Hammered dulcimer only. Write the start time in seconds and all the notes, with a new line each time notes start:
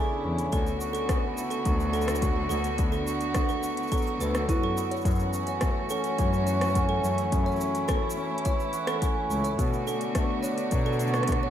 Already playing: A3 C#4 D4 G#4
0.10 E4
0.23 C#4
0.53 D3
0.81 F#4
1.09 B3
1.38 E4
1.51 F#4
1.65 F#3
1.94 A4
2.21 F#4
2.50 B3
2.78 D3
3.07 F#4
3.35 B3
3.64 F#4
3.92 F#3
4.20 A4
4.49 F#4
4.77 B3
5.06 F#2
5.34 C#4
5.62 A3
5.91 C#4
6.19 E3
6.47 F#4
6.75 C#4
7.04 A3
7.32 F#2
7.61 C#4
7.89 A3
8.17 C#4
8.45 E3
8.73 F#4
9.02 C#4
9.30 A3
9.58 B2
9.87 D4
10.15 A3
10.44 D4
10.72 F#3
11.00 F#4
11.29 D4